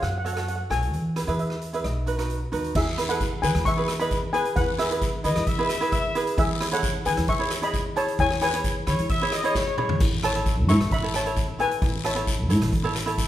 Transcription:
0.02 upright bass F#2, steel pan F#5, cross-stick, closed hi-hat
0.10 steel pan F#5
0.18 steel pan F#5
0.24 ukulele F#4 A4 C#5, steel pan F#5, closed hi-hat
0.33 ukulele F#4 A4, steel pan F#5, cross-stick, closed hi-hat
0.37 ukulele C#5, steel pan F#5
0.48 steel pan F#5, closed hi-hat
0.56 steel pan F#5
0.70 upright bass B1, ukulele F#4 A4 C#5, steel pan G#5, cross-stick, closed hi-hat
0.82 closed hi-hat
0.93 upright bass E2, closed hi-hat
1.16 ukulele E4 G#4 B4, cross-stick, closed hi-hat
1.27 upright bass E2, ukulele E4 G#4 B4, steel pan E5, closed hi-hat
1.39 steel pan E5, closed hi-hat
1.50 cross-stick
1.62 closed hi-hat
1.73 ukulele E4 G#4 B4, steel pan E5, closed hi-hat
1.84 upright bass B1, steel pan D#5, cross-stick, closed hi-hat
2.06 ukulele D#4 F#4 B4, closed hi-hat
2.18 ukulele D#4 F#4 B4, cross-stick, closed hi-hat
2.30 closed hi-hat
2.52 upright bass D#2, ukulele D#4 F#4 B4, closed hi-hat
2.64 closed hi-hat
2.75 upright bass E2, steel pan G#4 E5, kick, crash, long guiro
2.97 ukulele E4 G#4 B4, cross-stick, closed hi-hat
3.08 ukulele E4 G#4 B4, steel pan A4 F#5, closed hi-hat
3.20 kick, closed hi-hat, short guiro
3.42 upright bass E3, ukulele E4 G#4 B4, steel pan B4 G#5, closed hi-hat, short guiro
3.55 upright bass E2, cross-stick, closed hi-hat
3.65 steel pan E5 C#6, kick, closed hi-hat, long guiro
3.77 ukulele E4 G#4 B4
3.88 cross-stick, closed hi-hat, short guiro
3.99 ukulele E4 G#4 B4, steel pan D#5 B5, closed hi-hat
4.11 kick, closed hi-hat, short guiro
4.33 ukulele E4 G#4 B4, steel pan B4 G#5, closed hi-hat
4.45 closed hi-hat
4.56 upright bass E2, steel pan B4 F#5, kick, closed hi-hat, long guiro
4.78 ukulele E4 G#4 B4, steel pan G#4 E5, cross-stick, closed hi-hat
4.90 ukulele E4 G#4 B4, closed hi-hat
5.01 kick, closed hi-hat, short guiro
5.24 upright bass E3, ukulele E4 G#4 B4, horn section D#5, closed hi-hat, short guiro
5.36 upright bass E2, cross-stick, closed hi-hat
5.47 horn section E5, kick, closed hi-hat, long guiro
5.58 ukulele E4 G#4 B4
5.69 cross-stick, closed hi-hat, short guiro
5.81 ukulele E4 G#4 B4, closed hi-hat
5.92 horn section E5, kick, closed hi-hat, short guiro
6.15 ukulele E4 G#4 B4, closed hi-hat
6.27 closed hi-hat
6.37 upright bass E2, steel pan G#4 E5, kick, closed hi-hat, long guiro
6.60 ukulele E4 G#4 C#5, cross-stick, closed hi-hat
6.71 ukulele E4 G#4 C#5, steel pan A4 F#5, closed hi-hat
6.83 kick, closed hi-hat, short guiro
7.05 upright bass E3, ukulele E4 G#4 C#5, steel pan B4 G#5, closed hi-hat, short guiro
7.17 upright bass E2, cross-stick, closed hi-hat
7.28 steel pan E5 C#6, kick, closed hi-hat, long guiro
7.39 ukulele E4 G#4 C#5
7.51 cross-stick, closed hi-hat, short guiro
7.62 ukulele E4 G#4 C#5, steel pan D#5 B5, closed hi-hat
7.74 kick, closed hi-hat, short guiro
7.96 ukulele E4 G#4 C#5, steel pan C#5 A5, closed hi-hat
8.08 closed hi-hat
8.19 upright bass E2, steel pan C#5 G#5, kick, closed hi-hat, long guiro
8.31 cross-stick
8.41 ukulele E4 G#4 C#5, steel pan B4 G#5, cross-stick, closed hi-hat
8.53 ukulele E4 G#4 C#5, closed hi-hat
8.64 kick, closed hi-hat, short guiro
8.87 upright bass E3, ukulele E4 G#4 C#5, horn section C#5, cross-stick, closed hi-hat, short guiro
8.99 upright bass E2, closed hi-hat
9.09 horn section E5, kick, closed hi-hat, long guiro
9.22 ukulele E4 G#4 C#5
9.32 horn section D#5, cross-stick, closed hi-hat, short guiro
9.44 ukulele E4 G#4 C#5, closed hi-hat
9.55 horn section C#5, kick, snare, short guiro
9.77 ukulele E4 G#4 C#5, horn section C#5, mid tom
9.89 floor tom
10.00 upright bass A1, kick, closed hi-hat, crash, long guiro
10.23 ukulele E4 A4 C#5, steel pan C#5 A5, cross-stick, closed hi-hat
10.35 ukulele E4 A4 C#5, closed hi-hat
10.46 kick, closed hi-hat, short guiro
10.69 upright bass A2, ukulele E4 A4 C#5, steel pan E5 C#6, closed hi-hat, short guiro
10.80 upright bass A1, cross-stick, closed hi-hat
10.91 steel pan E5 B5, kick, closed hi-hat, long guiro
11.03 ukulele E4 A4 C#5
11.14 steel pan C#5 A5, cross-stick, closed hi-hat, short guiro
11.25 ukulele E4 A4 C#5, closed hi-hat
11.36 kick, closed hi-hat, short guiro
11.59 ukulele E4 A4 C#5, steel pan B4 G#5, closed hi-hat
11.71 closed hi-hat
11.82 upright bass A1, kick, closed hi-hat, long guiro
12.04 ukulele E4 A4 E5, steel pan C#5 A5, cross-stick, closed hi-hat
12.15 ukulele E4 A4 C#5, closed hi-hat
12.27 kick, closed hi-hat, short guiro
12.49 upright bass A2, ukulele E4 A4 C#5, closed hi-hat, short guiro
12.62 upright bass A1, cross-stick, closed hi-hat
12.72 kick, closed hi-hat, long guiro
12.83 ukulele E4 A4 C#5
12.96 cross-stick, closed hi-hat, short guiro
13.06 ukulele E4 A4 C#5, closed hi-hat
13.18 kick, closed hi-hat, short guiro

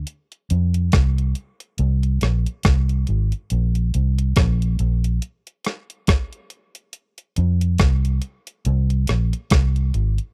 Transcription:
0.07 closed hi-hat
0.32 closed hi-hat
0.50 fingered electric bass F2, closed hi-hat
0.74 closed hi-hat
0.92 fingered electric bass C2, kick, cross-stick, closed hi-hat
1.18 closed hi-hat
1.35 closed hi-hat
1.60 closed hi-hat
1.78 fingered electric bass C2, closed hi-hat
2.03 closed hi-hat
2.21 fingered electric bass A#1, cross-stick, closed hi-hat
2.46 closed hi-hat
2.63 fingered electric bass C2, kick, cross-stick, closed hi-hat
2.89 closed hi-hat
3.07 fingered electric bass G#1, closed hi-hat
3.32 closed hi-hat
3.50 fingered electric bass A#1, closed hi-hat
3.75 closed hi-hat
3.94 fingered electric bass C2, closed hi-hat
4.19 closed hi-hat
4.36 fingered electric bass A#1, kick, cross-stick, closed hi-hat
4.62 closed hi-hat
4.79 fingered electric bass A#1, closed hi-hat
5.04 closed hi-hat
5.22 closed hi-hat
5.47 closed hi-hat
5.65 cross-stick, closed hi-hat
5.90 closed hi-hat
6.07 kick, cross-stick, closed hi-hat
6.33 closed hi-hat
6.50 closed hi-hat
6.75 closed hi-hat
6.93 closed hi-hat
7.18 closed hi-hat
7.36 fingered electric bass F2, closed hi-hat
7.61 closed hi-hat
7.78 fingered electric bass C2, kick, cross-stick, closed hi-hat
8.05 closed hi-hat
8.22 closed hi-hat
8.47 closed hi-hat
8.65 fingered electric bass C2, closed hi-hat
8.90 closed hi-hat
9.07 fingered electric bass A#1, cross-stick, closed hi-hat
9.33 closed hi-hat
9.50 fingered electric bass C2, kick, cross-stick, closed hi-hat
9.76 closed hi-hat
9.94 fingered electric bass G#1, closed hi-hat
10.18 closed hi-hat

